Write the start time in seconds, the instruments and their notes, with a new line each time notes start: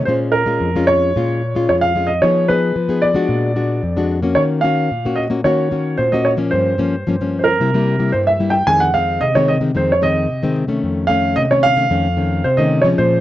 0.05 nylon-string guitar A#2 G#3 C#4 F4, grand piano C5
0.32 grand piano A#4
0.46 nylon-string guitar G#3 C#4 F4
0.60 nylon-string guitar F2
0.76 nylon-string guitar G#3 C#4 F4
0.87 grand piano C#5
1.16 nylon-string guitar A#2 G#3 C#4 F4
1.55 nylon-string guitar G#3 C#4 F4
1.69 nylon-string guitar F2, grand piano C#5
1.81 grand piano F5
1.96 nylon-string guitar G#3 C#4 F4
2.07 grand piano D#5
2.22 nylon-string guitar F3 B3 D#4 G#4, grand piano C#5
2.48 nylon-string guitar B3 D#4 G#4, grand piano B4
2.76 nylon-string guitar F3
2.89 nylon-string guitar B3 D#4 G#4
3.02 grand piano D5
3.14 nylon-string guitar G#3 D4 F#4
3.29 nylon-string guitar A#2
3.56 nylon-string guitar G#3 D4 F#4
3.83 nylon-string guitar F2
3.97 nylon-string guitar G#3 D4 F#4
4.22 nylon-string guitar A#3 C#4 F#4
4.35 nylon-string guitar D#3, grand piano C#5
4.61 nylon-string guitar A#3 C#4 F#4, grand piano F5
4.91 nylon-string guitar A#2
5.05 nylon-string guitar A#3 C#4 F#4
5.16 grand piano D#5
5.30 nylon-string guitar A#3 C#4 F#4
5.44 nylon-string guitar D#3 A#3 C#4 F#4, grand piano C#5
5.71 nylon-string guitar A#3 C#4 F#4
5.97 nylon-string guitar A#2, grand piano C5
6.12 nylon-string guitar A#3 C#4 F#4, grand piano D#5
6.25 grand piano C#5
6.37 nylon-string guitar F3 A#3 C#4
6.51 nylon-string guitar G2, grand piano C5
6.78 nylon-string guitar F3 A#3 C#4
7.07 nylon-string guitar G2 F3 A#3 C#4
7.21 nylon-string guitar F3 A#3 C#4
7.39 grand piano C5
7.44 grand piano A#4
7.60 nylon-string guitar C3 G3 A#3 E4
7.74 nylon-string guitar G3 A#3 E4
7.99 nylon-string guitar G3 A#3 E4
8.12 nylon-string guitar G2, grand piano C5
8.27 grand piano E5
8.40 nylon-string guitar G3 A#3 E4
8.50 grand piano G5
8.67 nylon-string guitar F2 D#3 G#3 C4, grand piano G#5
8.80 grand piano F#5
8.93 nylon-string guitar D#3 G#3 C4, grand piano F5
9.21 nylon-string guitar C3, grand piano D#5
9.35 nylon-string guitar D#3 G#3 C4, grand piano C#5
9.48 grand piano D#5
9.61 nylon-string guitar D#3 G#3 C4
9.75 nylon-string guitar F2 D#3 G#3 C4, grand piano C5
9.92 grand piano C#5
10.01 nylon-string guitar D#3 G#3 C4, grand piano D#5
10.29 nylon-string guitar C3
10.43 nylon-string guitar D#3 G#3 C4
10.68 nylon-string guitar D#3 A3 C#4
10.83 nylon-string guitar F2
11.07 nylon-string guitar D#3 A3 C#4, grand piano F5
11.36 nylon-string guitar C3, grand piano D#5
11.50 nylon-string guitar D#3 A3 C#4, grand piano C#5
11.63 grand piano F5
11.76 nylon-string guitar D#3 A3 C#4
11.90 nylon-string guitar F2 D#3 A3 C#4
12.17 nylon-string guitar D#3 A3 C#4
12.44 nylon-string guitar C3, grand piano C5
12.57 nylon-string guitar D#3 A3 C#4, grand piano D#5
12.82 nylon-string guitar F3 G#3 C#4, grand piano C#5
12.98 nylon-string guitar A#2, grand piano C5